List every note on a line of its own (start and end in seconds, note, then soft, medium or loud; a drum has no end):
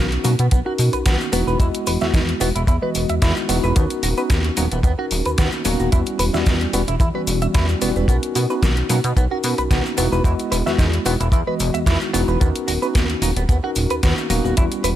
0.00 0.18 B1 medium
0.00 0.22 B3 medium
0.00 0.22 C#4 medium
0.00 0.22 D#4 medium
0.00 0.22 F#4 medium
0.12 closed hi-hat soft
0.24 0.35 B2 medium
0.24 0.32 F#3 medium
0.24 0.32 A#3 medium
0.24 0.32 B3 medium
0.24 0.32 C#4 medium
0.24 0.32 D#4 medium
0.24 0.32 F#4 medium
0.24 open hi-hat medium
0.24 cabasa medium
0.39 0.49 B2 medium
0.39 0.46 B3 medium
0.39 closed hi-hat medium
0.39 cabasa soft
0.51 0.63 B1 medium
0.51 0.59 B3 medium
0.51 kick loud
0.51 closed hi-hat medium
0.51 cabasa soft
0.65 1.03 C#4 medium
0.65 1.03 D#4 medium
0.65 0.72 F#4 medium
0.65 1.03 F#4 medium
0.65 1.02 A#4 medium
0.78 0.90 B2 medium
0.78 open hi-hat loud
0.78 cabasa medium
0.93 1.03 B1 soft
0.93 0.97 B4 medium
0.93 closed hi-hat soft
0.93 cabasa soft
1.05 1.17 B1 medium
1.05 1.30 A#3 medium
1.05 1.30 B3 medium
1.05 1.17 B3 medium
1.05 1.30 C#4 medium
1.05 1.30 D#4 medium
1.05 1.30 F#4 medium
1.05 kick loud
1.05 snare loud
1.05 closed hi-hat medium
1.05 cabasa medium
1.20 cabasa soft
1.32 1.44 E1 loud
1.32 1.56 G#3 medium
1.32 1.57 B3 medium
1.32 1.40 B3 loud
1.32 1.57 D#4 medium
1.32 1.57 E4 medium
1.32 1.57 F#4 medium
1.32 open hi-hat loud
1.32 cabasa medium
1.47 1.57 E1 medium
1.47 1.57 B4 medium
1.47 cabasa soft
1.59 1.70 E2 loud
1.59 1.98 G#3 medium
1.59 1.98 B3 medium
1.59 1.98 E4 medium
1.59 1.67 E4 medium
1.59 1.98 F#4 medium
1.59 1.98 D#5 medium
1.59 kick loud
1.59 closed hi-hat medium
1.59 cabasa medium
1.74 closed hi-hat soft
1.74 cabasa soft
1.87 1.98 E1 medium
1.87 1.91 B4 medium
1.87 open hi-hat loud
1.87 cabasa medium
2.01 2.12 E2 soft
2.01 2.38 G#3 medium
2.01 2.38 B3 medium
2.01 2.38 E4 medium
2.01 2.38 F#4 medium
2.01 2.05 E5 medium
2.01 snare soft
2.01 cabasa soft
2.14 2.34 E2 medium
2.14 2.21 D#4 medium
2.14 kick loud
2.14 snare loud
2.14 closed hi-hat medium
2.14 cabasa soft
2.29 closed hi-hat soft
2.40 2.52 E1 medium
2.40 2.48 G#3 medium
2.40 2.48 B3 medium
2.40 2.48 B3 loud
2.40 2.48 D#4 medium
2.40 2.49 E4 medium
2.40 2.49 F#4 medium
2.40 open hi-hat loud
2.40 cabasa medium
2.55 2.65 E1 medium
2.55 2.62 E4 medium
2.55 closed hi-hat soft
2.55 cabasa soft
2.67 2.78 E2 medium
2.67 2.75 E4 medium
2.67 kick loud
2.67 closed hi-hat medium
2.67 cabasa soft
2.82 3.19 E3 medium
2.82 3.19 G#3 medium
2.82 3.19 B3 medium
2.82 3.19 F#4 medium
2.82 2.89 B4 medium
2.82 3.19 D#5 medium
2.95 3.06 E1 medium
2.95 open hi-hat loud
2.95 cabasa medium
3.09 3.20 E2 soft
3.09 3.13 E5 medium
3.09 closed hi-hat soft
3.09 cabasa soft
3.21 3.33 E2 medium
3.21 3.46 G#3 medium
3.21 3.46 B3 medium
3.21 3.46 D#4 medium
3.21 3.46 E4 medium
3.21 3.33 E4 medium
3.21 3.46 F#4 medium
3.21 kick loud
3.21 snare loud
3.21 closed hi-hat medium
3.21 cabasa medium
3.36 cabasa soft
3.48 3.60 E1 loud
3.48 3.73 G#3 medium
3.48 3.73 B3 medium
3.48 3.56 B3 loud
3.48 3.73 D#4 medium
3.48 3.73 E4 medium
3.48 3.73 F#4 medium
3.48 open hi-hat loud
3.48 cabasa loud
3.63 3.73 E1 medium
3.63 3.73 B4 medium
3.63 cabasa soft
3.75 3.87 D#2 medium
3.75 4.14 B3 medium
3.75 3.83 B3 medium
3.75 4.14 C#4 medium
3.75 4.14 D#4 medium
3.75 4.14 F#4 medium
3.75 4.14 A#4 medium
3.75 kick loud
3.75 closed hi-hat medium
3.75 cabasa medium
3.90 closed hi-hat soft
3.90 cabasa soft
4.03 4.14 D#1 medium
4.03 4.08 F#4 medium
4.03 open hi-hat loud
4.03 cabasa medium
4.17 4.54 B3 medium
4.17 4.54 C#4 medium
4.17 4.54 D#4 medium
4.17 4.54 F#4 medium
4.17 4.21 B4 medium
4.17 cabasa soft
4.30 4.50 D#2 medium
4.30 4.38 A#3 medium
4.30 kick loud
4.30 snare loud
4.30 closed hi-hat medium
4.30 cabasa medium
4.44 closed hi-hat soft
4.57 4.68 D#1 medium
4.57 4.64 F#3 loud
4.57 4.65 A#3 medium
4.57 4.65 B3 medium
4.57 4.65 C#4 medium
4.57 4.65 D#4 medium
4.57 4.65 F#4 medium
4.57 open hi-hat loud
4.57 cabasa medium
4.72 4.81 D#1 medium
4.72 4.78 B3 medium
4.72 closed hi-hat medium
4.72 cabasa soft
4.83 4.94 D#2 medium
4.83 4.91 B3 medium
4.83 kick loud
4.83 closed hi-hat medium
4.83 cabasa soft
4.98 5.35 C#4 medium
4.98 5.35 D#4 medium
4.98 5.05 F#4 medium
4.98 5.35 F#4 medium
4.98 5.35 A#4 medium
5.11 5.22 D#1 medium
5.11 open hi-hat loud
5.11 cabasa medium
5.25 5.36 D#2 soft
5.25 5.30 B4 medium
5.25 closed hi-hat soft
5.25 cabasa soft
5.37 5.49 D#2 medium
5.37 5.62 A#3 medium
5.37 5.62 B3 medium
5.37 5.49 B3 medium
5.37 5.62 C#4 medium
5.37 5.62 D#4 medium
5.37 5.62 F#4 medium
5.37 kick loud
5.37 snare loud
5.37 closed hi-hat medium
5.37 cabasa medium
5.52 cabasa soft
5.65 5.76 D#1 loud
5.65 5.73 F#3 loud
5.65 5.89 A#3 medium
5.65 5.89 B3 medium
5.65 5.89 C#4 medium
5.65 5.89 D#4 medium
5.65 5.89 F#4 medium
5.65 open hi-hat loud
5.65 cabasa loud
5.80 5.89 D#1 medium
5.80 5.89 F#4 medium
5.80 cabasa soft
5.91 6.03 E2 medium
5.91 6.30 G3 medium
5.91 6.30 B3 medium
5.91 6.30 C#4 medium
5.91 6.00 E4 medium
5.91 6.30 E4 medium
5.91 6.31 F#4 medium
5.91 kick loud
5.91 closed hi-hat medium
5.91 cabasa soft
6.06 closed hi-hat soft
6.06 cabasa soft
6.19 6.30 E1 medium
6.19 6.24 B4 medium
6.19 open hi-hat loud
6.19 cabasa medium
6.33 6.44 E2 soft
6.33 6.70 G3 medium
6.33 6.70 B3 medium
6.33 6.70 C#4 medium
6.33 6.70 E4 medium
6.33 6.71 F#4 medium
6.33 6.38 E5 medium
6.33 snare soft
6.33 cabasa soft
6.46 6.67 E2 medium
6.46 6.54 D#4 medium
6.46 kick loud
6.46 snare loud
6.46 closed hi-hat medium
6.46 cabasa medium
6.61 closed hi-hat soft
6.73 6.84 E1 medium
6.73 6.81 G3 medium
6.73 6.81 B3 medium
6.73 6.81 B3 loud
6.73 6.81 C#4 medium
6.73 6.81 E4 medium
6.73 6.81 F#4 medium
6.73 open hi-hat loud
6.73 cabasa medium
6.87 6.97 E1 medium
6.87 6.94 E4 medium
6.87 closed hi-hat medium
6.87 cabasa soft
7.00 7.11 E2 medium
7.00 7.08 E4 medium
7.00 kick loud
7.00 closed hi-hat medium
7.00 cabasa soft
7.14 7.51 E3 medium
7.14 7.51 G3 medium
7.14 7.51 B3 medium
7.14 7.51 C#4 medium
7.14 7.52 F#4 medium
7.14 7.21 B4 medium
7.27 7.48 E1 loud
7.27 open hi-hat loud
7.27 cabasa medium
7.42 7.46 E5 medium
7.42 closed hi-hat soft
7.42 cabasa soft
7.54 7.75 E2 medium
7.54 7.78 G3 medium
7.54 7.78 B3 medium
7.54 7.78 C#4 medium
7.54 7.78 E4 medium
7.54 7.65 E4 medium
7.54 7.79 F#4 medium
7.54 kick loud
7.54 snare loud
7.54 closed hi-hat medium
7.54 cabasa soft
7.69 cabasa soft
7.81 7.92 E1 medium
7.81 8.05 G3 medium
7.81 8.05 B3 medium
7.81 7.89 B3 loud
7.81 8.05 C#4 medium
7.81 8.06 E4 medium
7.81 8.06 F#4 medium
7.81 open hi-hat loud
7.81 cabasa medium
7.96 8.05 E1 medium
7.96 8.06 B4 medium
7.96 cabasa soft
8.08 8.19 B1 medium
8.08 8.46 B3 medium
8.08 8.16 B3 medium
8.08 8.46 C#4 medium
8.08 8.47 D#4 medium
8.08 8.47 F#4 medium
8.08 8.46 A#4 medium
8.08 kick loud
8.08 closed hi-hat medium
8.08 cabasa soft
8.23 closed hi-hat soft
8.23 cabasa soft
8.35 8.46 B2 medium
8.35 8.40 F#4 medium
8.35 open hi-hat loud
8.35 cabasa medium
8.50 8.86 B3 medium
8.50 8.87 C#4 medium
8.50 8.87 D#4 medium
8.50 8.87 F#4 medium
8.50 8.54 B4 medium
8.50 cabasa soft
8.62 8.83 B1 medium
8.62 8.70 A#3 medium
8.62 kick loud
8.62 snare loud
8.62 closed hi-hat medium
8.62 cabasa medium
8.77 closed hi-hat soft
8.89 9.00 B2 medium
8.89 8.97 F#3 loud
8.89 8.97 A#3 medium
8.89 8.97 B3 medium
8.89 8.97 C#4 medium
8.89 8.97 D#4 medium
8.89 8.98 F#4 medium
8.89 open hi-hat loud
8.89 cabasa medium
9.04 9.13 B2 medium
9.04 9.11 B3 medium
9.04 closed hi-hat soft
9.04 cabasa soft
9.17 9.27 B1 medium
9.17 9.24 B3 medium
9.17 kick loud
9.17 closed hi-hat medium
9.17 cabasa soft
9.31 9.68 C#4 medium
9.31 9.68 D#4 medium
9.31 9.37 F#4 medium
9.31 9.68 F#4 medium
9.31 9.67 A#4 medium
9.43 9.55 B2 medium
9.43 open hi-hat loud
9.43 cabasa medium
9.58 9.68 B1 soft
9.58 9.62 B4 medium
9.58 closed hi-hat soft
9.58 cabasa soft
9.70 9.81 B1 medium
9.70 9.95 A#3 medium
9.70 9.95 B3 medium
9.70 9.82 B3 medium
9.70 9.95 C#4 medium
9.70 9.95 D#4 medium
9.70 9.95 F#4 medium
9.70 kick loud
9.70 snare loud
9.70 closed hi-hat medium
9.70 cabasa soft
9.86 cabasa soft
9.97 10.08 E1 loud
9.97 10.21 G#3 medium
9.97 10.22 B3 medium
9.97 10.05 B3 loud
9.97 10.22 D#4 medium
9.97 10.22 E4 medium
9.97 10.22 F#4 medium
9.97 open hi-hat loud
9.97 cabasa medium
10.12 10.21 E1 medium
10.12 10.22 B4 medium
10.12 cabasa soft
10.24 10.35 E2 medium
10.24 10.62 G#3 medium
10.24 10.63 B3 medium
10.24 10.63 E4 medium
10.24 10.32 E4 medium
10.24 10.63 F#4 medium
10.24 10.63 D#5 medium
10.24 kick loud
10.24 closed hi-hat medium
10.24 cabasa medium
10.39 closed hi-hat soft
10.39 cabasa soft
10.52 10.63 E1 medium
10.52 10.56 B4 medium
10.52 open hi-hat loud
10.52 cabasa medium
10.66 10.76 E2 soft
10.66 11.03 G#3 medium
10.66 11.03 B3 medium
10.66 11.03 E4 medium
10.66 11.03 F#4 medium
10.66 10.70 E5 medium
10.66 snare soft
10.66 cabasa soft
10.78 10.99 E2 medium
10.78 10.86 D#4 medium
10.78 kick medium
10.78 snare loud
10.78 closed hi-hat medium
10.78 cabasa medium
10.93 closed hi-hat soft
11.05 11.17 E1 medium
11.05 11.13 G#3 medium
11.05 11.13 B3 medium
11.05 11.13 D#4 medium
11.05 11.14 E4 medium
11.05 11.14 F#4 medium
11.05 open hi-hat loud
11.05 cabasa medium
11.20 11.30 E1 medium
11.20 11.27 E4 medium
11.20 closed hi-hat medium
11.20 cabasa soft
11.32 11.43 E2 medium
11.32 11.40 E4 medium
11.32 kick loud
11.32 closed hi-hat medium
11.32 cabasa soft
11.47 11.84 E3 medium
11.47 11.84 G#3 medium
11.47 11.84 B3 medium
11.47 11.84 F#4 medium
11.47 11.54 B4 medium
11.47 11.84 D#5 medium
11.60 11.71 E1 medium
11.60 open hi-hat loud
11.60 cabasa medium
11.74 11.84 E2 soft
11.74 11.78 E5 medium
11.74 closed hi-hat soft
11.74 cabasa soft
11.86 11.97 E2 medium
11.86 12.10 G#3 medium
11.86 12.11 B3 medium
11.86 12.11 D#4 medium
11.86 12.11 E4 medium
11.86 11.98 E4 medium
11.86 12.11 F#4 medium
11.86 kick loud
11.86 snare loud
11.86 closed hi-hat medium
11.86 cabasa soft
12.01 cabasa soft
12.13 12.25 E1 loud
12.13 12.38 G#3 medium
12.13 12.21 B3 loud
12.13 12.38 B3 medium
12.13 12.38 D#4 medium
12.13 12.38 E4 medium
12.13 12.38 F#4 medium
12.13 open hi-hat loud
12.13 cabasa medium
12.28 12.38 E1 medium
12.28 12.38 B4 medium
12.28 cabasa soft
12.40 12.52 D#2 loud
12.40 12.48 B3 medium
12.40 12.79 B3 medium
12.40 12.79 C#4 medium
12.40 12.79 D#4 medium
12.40 12.79 F#4 medium
12.40 12.79 A#4 medium
12.40 kick loud
12.40 closed hi-hat medium
12.40 cabasa soft
12.55 closed hi-hat medium
12.55 cabasa soft
12.68 12.79 D#1 medium
12.68 12.72 F#4 medium
12.68 open hi-hat loud
12.68 cabasa medium
12.82 13.19 B3 medium
12.82 13.19 C#4 medium
12.82 13.19 D#4 medium
12.82 13.19 F#4 medium
12.82 12.86 B4 medium
12.82 cabasa soft
12.95 13.15 D#2 medium
12.95 13.02 A#3 medium
12.95 kick medium
12.95 snare loud
12.95 closed hi-hat medium
12.95 cabasa soft
13.10 closed hi-hat soft
13.22 13.33 D#1 medium
13.22 13.29 F#3 medium
13.22 13.30 A#3 medium
13.22 13.30 B3 medium
13.22 13.30 C#4 medium
13.22 13.30 D#4 medium
13.22 13.30 F#4 medium
13.22 open hi-hat loud
13.22 cabasa medium
13.36 13.46 D#1 medium
13.36 13.43 B3 medium
13.36 closed hi-hat medium
13.36 cabasa soft
13.49 13.60 D#2 medium
13.49 13.56 B3 medium
13.49 kick loud
13.49 closed hi-hat medium
13.49 cabasa soft
13.63 14.00 C#4 medium
13.63 14.00 D#4 medium
13.63 13.70 F#4 medium
13.63 14.00 F#4 medium
13.63 14.00 A#4 medium
13.75 13.87 D#1 loud
13.75 open hi-hat medium
13.75 cabasa medium
13.90 14.01 D#2 soft
13.90 13.94 B4 medium
13.90 closed hi-hat soft
13.90 cabasa soft
14.03 14.14 D#2 medium
14.03 14.27 A#3 medium
14.03 14.14 B3 medium
14.03 14.27 B3 medium
14.03 14.27 C#4 medium
14.03 14.27 D#4 medium
14.03 14.28 F#4 medium
14.03 kick loud
14.03 snare loud
14.03 closed hi-hat medium
14.03 cabasa soft
14.18 cabasa soft
14.30 14.41 D#1 loud
14.30 14.37 F#3 loud
14.30 14.54 A#3 medium
14.30 14.54 B3 medium
14.30 14.54 C#4 medium
14.30 14.54 D#4 medium
14.30 14.54 F#4 medium
14.30 open hi-hat medium
14.30 cabasa medium
14.45 14.54 D#1 medium
14.45 14.54 F#4 medium
14.45 cabasa soft
14.57 14.68 E2 loud
14.57 14.95 G3 medium
14.57 14.95 B3 medium
14.57 14.95 C#4 medium
14.57 14.64 E4 medium
14.57 14.95 E4 medium
14.57 14.96 F#4 medium
14.57 kick loud
14.57 closed hi-hat medium
14.57 cabasa soft
14.72 closed hi-hat soft
14.72 cabasa soft
14.84 14.95 E1 medium
14.84 14.89 B4 medium
14.84 open hi-hat loud
14.84 cabasa medium